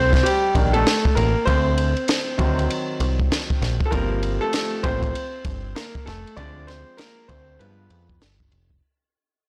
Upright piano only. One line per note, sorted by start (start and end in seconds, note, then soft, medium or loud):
0.00 0.23 C4 medium
0.00 0.25 C5 medium
0.23 0.71 G3 medium
0.23 0.75 G4 medium
0.55 0.83 D#3 soft
0.55 0.83 A#3 soft
0.55 0.83 D4 soft
0.73 1.14 A3 medium
0.73 1.13 A4 medium
1.15 1.45 A#3 medium
1.15 1.47 A#4 medium
1.45 2.38 C4 medium
1.45 2.65 C5 medium
2.38 3.87 D#3 medium
2.38 3.88 F#3 soft
2.38 3.88 C4 medium
3.85 3.91 A4 medium
3.91 4.79 F3 medium
3.91 4.80 G3 soft
3.91 4.39 A#3 medium
3.91 4.80 C4 medium
3.91 4.43 A#4 medium
4.41 4.81 A3 medium
4.41 4.85 A4 medium
4.83 5.11 F3 soft
4.83 5.11 A3 soft
4.83 5.11 A#3 soft
4.83 5.72 C4 medium
4.83 5.78 C5 medium
5.75 6.05 A#3 medium
5.75 6.07 A#4 medium
6.06 6.35 A3 medium
6.06 6.38 A4 medium
6.37 7.25 F3 soft
6.37 7.25 G#3 soft
6.37 6.67 C4 medium
6.37 6.66 D4 medium
6.37 6.65 D5 loud
6.67 6.96 C4 medium
6.67 6.99 C5 medium
6.97 7.27 A#3 medium
6.97 7.26 A#4 medium
7.28 7.58 C4 medium
7.28 7.60 C5 medium
7.59 8.03 F3 soft
7.59 8.03 G#3 soft
7.59 8.17 B3 medium
7.59 8.16 B4 medium